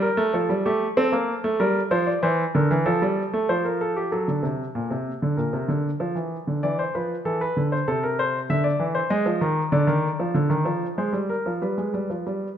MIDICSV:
0, 0, Header, 1, 2, 480
1, 0, Start_track
1, 0, Tempo, 629591
1, 1221, Time_signature, 4, 2, 24, 8
1, 5064, Tempo, 618557
1, 7944, Tempo, 641711
1, 9606, End_track
2, 0, Start_track
2, 0, Title_t, "Grand piano"
2, 0, Program_c, 0, 0
2, 15, Note_on_c, 0, 70, 84
2, 131, Note_on_c, 0, 57, 98
2, 166, Note_off_c, 0, 70, 0
2, 253, Note_off_c, 0, 57, 0
2, 253, Note_on_c, 0, 69, 76
2, 256, Note_on_c, 0, 53, 87
2, 376, Note_off_c, 0, 53, 0
2, 377, Note_on_c, 0, 55, 78
2, 404, Note_off_c, 0, 69, 0
2, 496, Note_off_c, 0, 55, 0
2, 500, Note_on_c, 0, 67, 70
2, 501, Note_on_c, 0, 57, 90
2, 649, Note_off_c, 0, 67, 0
2, 650, Note_off_c, 0, 57, 0
2, 739, Note_on_c, 0, 69, 71
2, 740, Note_on_c, 0, 60, 99
2, 856, Note_on_c, 0, 58, 81
2, 858, Note_off_c, 0, 60, 0
2, 1006, Note_off_c, 0, 58, 0
2, 1098, Note_on_c, 0, 57, 92
2, 1205, Note_off_c, 0, 69, 0
2, 1216, Note_off_c, 0, 57, 0
2, 1218, Note_on_c, 0, 55, 89
2, 1218, Note_on_c, 0, 70, 84
2, 1367, Note_off_c, 0, 55, 0
2, 1367, Note_off_c, 0, 70, 0
2, 1456, Note_on_c, 0, 53, 94
2, 1456, Note_on_c, 0, 72, 77
2, 1574, Note_off_c, 0, 72, 0
2, 1575, Note_on_c, 0, 74, 68
2, 1607, Note_off_c, 0, 53, 0
2, 1694, Note_off_c, 0, 74, 0
2, 1697, Note_on_c, 0, 72, 80
2, 1698, Note_on_c, 0, 52, 95
2, 1848, Note_off_c, 0, 52, 0
2, 1848, Note_off_c, 0, 72, 0
2, 1941, Note_on_c, 0, 50, 92
2, 1942, Note_on_c, 0, 70, 69
2, 2059, Note_off_c, 0, 50, 0
2, 2065, Note_on_c, 0, 52, 88
2, 2092, Note_off_c, 0, 70, 0
2, 2178, Note_on_c, 0, 69, 80
2, 2179, Note_on_c, 0, 53, 95
2, 2181, Note_off_c, 0, 52, 0
2, 2298, Note_off_c, 0, 53, 0
2, 2302, Note_on_c, 0, 55, 85
2, 2453, Note_off_c, 0, 55, 0
2, 2542, Note_on_c, 0, 57, 85
2, 2651, Note_off_c, 0, 69, 0
2, 2661, Note_on_c, 0, 72, 75
2, 2662, Note_off_c, 0, 57, 0
2, 2662, Note_on_c, 0, 53, 81
2, 2781, Note_on_c, 0, 70, 64
2, 2782, Note_off_c, 0, 72, 0
2, 2902, Note_off_c, 0, 70, 0
2, 2905, Note_on_c, 0, 69, 72
2, 3022, Note_on_c, 0, 67, 68
2, 3024, Note_off_c, 0, 69, 0
2, 3134, Note_off_c, 0, 53, 0
2, 3140, Note_on_c, 0, 69, 61
2, 3142, Note_on_c, 0, 54, 72
2, 3143, Note_off_c, 0, 67, 0
2, 3262, Note_on_c, 0, 50, 61
2, 3263, Note_off_c, 0, 54, 0
2, 3375, Note_on_c, 0, 48, 61
2, 3383, Note_off_c, 0, 50, 0
2, 3528, Note_off_c, 0, 48, 0
2, 3621, Note_on_c, 0, 46, 70
2, 3740, Note_on_c, 0, 48, 69
2, 3741, Note_off_c, 0, 46, 0
2, 3890, Note_off_c, 0, 48, 0
2, 3982, Note_on_c, 0, 50, 66
2, 4072, Note_off_c, 0, 69, 0
2, 4094, Note_on_c, 0, 70, 55
2, 4095, Note_on_c, 0, 46, 64
2, 4100, Note_off_c, 0, 50, 0
2, 4216, Note_off_c, 0, 46, 0
2, 4216, Note_on_c, 0, 48, 64
2, 4333, Note_on_c, 0, 50, 70
2, 4337, Note_off_c, 0, 48, 0
2, 4485, Note_off_c, 0, 50, 0
2, 4574, Note_on_c, 0, 53, 74
2, 4691, Note_on_c, 0, 52, 59
2, 4695, Note_off_c, 0, 53, 0
2, 4843, Note_off_c, 0, 52, 0
2, 4935, Note_on_c, 0, 50, 61
2, 5026, Note_off_c, 0, 70, 0
2, 5054, Note_off_c, 0, 50, 0
2, 5055, Note_on_c, 0, 74, 80
2, 5058, Note_on_c, 0, 52, 65
2, 5176, Note_off_c, 0, 74, 0
2, 5178, Note_on_c, 0, 72, 68
2, 5209, Note_off_c, 0, 52, 0
2, 5297, Note_off_c, 0, 72, 0
2, 5301, Note_on_c, 0, 71, 70
2, 5302, Note_on_c, 0, 53, 60
2, 5450, Note_off_c, 0, 71, 0
2, 5451, Note_off_c, 0, 53, 0
2, 5537, Note_on_c, 0, 52, 65
2, 5538, Note_on_c, 0, 69, 75
2, 5656, Note_off_c, 0, 69, 0
2, 5661, Note_on_c, 0, 71, 83
2, 5686, Note_off_c, 0, 52, 0
2, 5781, Note_on_c, 0, 50, 70
2, 5809, Note_off_c, 0, 71, 0
2, 5901, Note_on_c, 0, 72, 71
2, 5929, Note_off_c, 0, 50, 0
2, 6016, Note_off_c, 0, 72, 0
2, 6022, Note_on_c, 0, 48, 73
2, 6023, Note_on_c, 0, 69, 84
2, 6137, Note_off_c, 0, 69, 0
2, 6143, Note_on_c, 0, 70, 73
2, 6258, Note_off_c, 0, 70, 0
2, 6267, Note_on_c, 0, 72, 81
2, 6413, Note_off_c, 0, 72, 0
2, 6486, Note_off_c, 0, 48, 0
2, 6503, Note_on_c, 0, 50, 74
2, 6505, Note_on_c, 0, 76, 82
2, 6614, Note_on_c, 0, 74, 75
2, 6618, Note_off_c, 0, 76, 0
2, 6650, Note_off_c, 0, 50, 0
2, 6735, Note_on_c, 0, 52, 76
2, 6763, Note_off_c, 0, 74, 0
2, 6852, Note_on_c, 0, 72, 80
2, 6883, Note_off_c, 0, 52, 0
2, 6970, Note_off_c, 0, 72, 0
2, 6973, Note_on_c, 0, 75, 82
2, 6974, Note_on_c, 0, 56, 89
2, 7091, Note_off_c, 0, 56, 0
2, 7094, Note_on_c, 0, 53, 85
2, 7211, Note_off_c, 0, 53, 0
2, 7214, Note_on_c, 0, 51, 87
2, 7363, Note_off_c, 0, 51, 0
2, 7440, Note_off_c, 0, 75, 0
2, 7452, Note_on_c, 0, 50, 88
2, 7454, Note_on_c, 0, 74, 78
2, 7571, Note_off_c, 0, 50, 0
2, 7571, Note_on_c, 0, 51, 84
2, 7723, Note_off_c, 0, 51, 0
2, 7821, Note_on_c, 0, 53, 77
2, 7937, Note_on_c, 0, 50, 83
2, 7938, Note_off_c, 0, 53, 0
2, 8052, Note_on_c, 0, 51, 77
2, 8053, Note_off_c, 0, 50, 0
2, 8167, Note_on_c, 0, 53, 78
2, 8170, Note_off_c, 0, 51, 0
2, 8317, Note_off_c, 0, 53, 0
2, 8385, Note_off_c, 0, 74, 0
2, 8411, Note_on_c, 0, 56, 76
2, 8411, Note_on_c, 0, 72, 63
2, 8523, Note_on_c, 0, 55, 70
2, 8527, Note_off_c, 0, 56, 0
2, 8559, Note_off_c, 0, 72, 0
2, 8648, Note_on_c, 0, 70, 65
2, 8674, Note_off_c, 0, 55, 0
2, 8772, Note_on_c, 0, 53, 66
2, 8798, Note_off_c, 0, 70, 0
2, 8888, Note_off_c, 0, 53, 0
2, 8890, Note_on_c, 0, 55, 61
2, 8891, Note_on_c, 0, 71, 59
2, 9008, Note_off_c, 0, 55, 0
2, 9009, Note_on_c, 0, 56, 59
2, 9129, Note_off_c, 0, 56, 0
2, 9129, Note_on_c, 0, 55, 58
2, 9249, Note_on_c, 0, 53, 59
2, 9250, Note_off_c, 0, 55, 0
2, 9371, Note_off_c, 0, 53, 0
2, 9374, Note_on_c, 0, 55, 63
2, 9526, Note_off_c, 0, 55, 0
2, 9606, Note_off_c, 0, 71, 0
2, 9606, End_track
0, 0, End_of_file